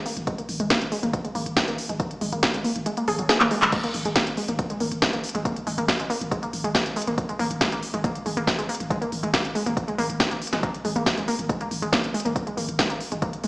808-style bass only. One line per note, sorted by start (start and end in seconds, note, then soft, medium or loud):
0.17 0.27 G#1 medium
0.49 0.59 G#1 loud
0.60 0.70 G#1 medium
0.81 0.92 G#1 medium
1.03 1.13 G#1 medium
1.35 1.46 G#1 loud
1.46 1.56 G#1 medium
1.68 1.78 G#1 medium
1.89 2.00 G#1 medium
2.21 2.32 G#1 loud
2.32 2.43 G#1 medium
2.54 2.64 G#1 medium
2.76 2.86 G#1 medium
3.08 3.18 G#1 loud
3.19 3.29 G#1 medium
3.41 3.51 G#1 medium
3.62 3.72 G#1 medium
3.94 4.05 G#1 loud
4.05 4.16 G#1 medium
4.27 4.37 G#1 medium
4.48 4.59 G#1 medium
4.80 4.91 G#1 loud
4.92 5.02 G#1 medium
5.13 5.23 G#1 medium
5.35 5.45 G#1 medium
5.67 5.77 G#1 loud
5.78 5.88 G#1 medium
5.99 6.10 G#1 medium
6.21 6.31 G#1 medium
6.53 6.64 G#1 loud
6.64 6.74 G#1 medium
6.86 6.96 G#1 medium
7.07 7.18 G#1 medium
7.39 7.50 G#1 loud
7.51 7.61 G#1 medium
7.72 7.82 G#1 medium
7.94 8.04 G#1 medium
8.26 8.36 G#1 loud
8.37 8.47 G#1 medium
8.59 8.69 G#1 medium
8.80 8.90 G#1 medium
9.12 9.23 G#1 medium
9.23 9.33 G#1 medium
9.45 9.55 G#1 medium
9.66 9.77 G#1 medium
9.98 10.09 G#1 loud
10.09 10.20 G#1 medium
10.31 10.41 G#1 medium
10.53 10.63 G#1 medium
10.85 10.95 G#1 loud
10.96 11.06 G#1 medium
11.17 11.28 G#1 medium
11.39 11.49 G#1 medium
11.71 11.82 G#1 loud
11.82 11.92 G#1 medium
12.04 12.14 G#1 medium
12.25 12.36 G#1 medium
12.57 12.68 G#1 loud
12.69 12.79 G#1 medium
12.90 13.00 G#1 medium
13.12 13.22 G#1 medium
13.44 13.47 G#1 loud